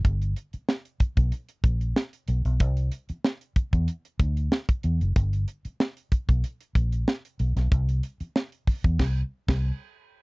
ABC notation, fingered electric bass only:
X:1
M:4/4
L:1/16
Q:1/4=94
K:C
V:1 name="Fingered electric bass" clef=bass
G,,,2 z4 z B,,, z2 _B,,,2 z2 =B,,, B,,, | C,,2 z4 z E,, z2 D,,2 z2 E,, ^F,,, | G,,,2 z4 z B,,, z2 _B,,,2 z2 =B,,, B,,, | C,,2 z4 z E,, C,,2 z C,,2 z3 |]